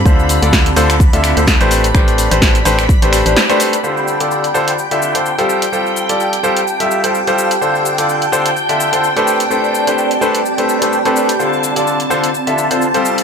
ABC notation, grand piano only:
X:1
M:4/4
L:1/16
Q:"Swing 16ths" 1/4=127
K:Ddor
V:1 name="Grand piano"
[D,DFAc]3 [D,DFAd]2 z [D,DFAc] z2 [D,DFAe]2 [D,DFAc] z [A,DGBc]2 z | [A,DGBc]3 [A,DGBc]2 z [A,DGBc] z2 [A,DGBc]2 [A,DGBc] z [A,DGBc]2 z | [D,DFAc]3 [D,DFAd]2 z [D,DFAc] z2 [D,DFAe]2 [D,DFAc] z [G,FGAc]2 z | [G,FGAc]3 [G,FGAd]2 z [G,FGAc] z2 [G,FGAe]2 [G,FGAc] z [G,FGAc]2 z |
[D,DFAc]3 [D,DFAd]2 z [D,DFAc] z2 [D,DFAe]2 [D,DFAc] z [A,DGABc]2 z | [A,DGABc]3 [A,DGABc]2 z [A,DGABc] z2 [A,DGABc]2 [A,DGABc] z [A,DGABc]2 z | [D,DFAc]3 [D,DFAd]2 z [D,DFAc] z2 [D,DFAe]2 [D,DFAc] z [G,FGAc]2 z |]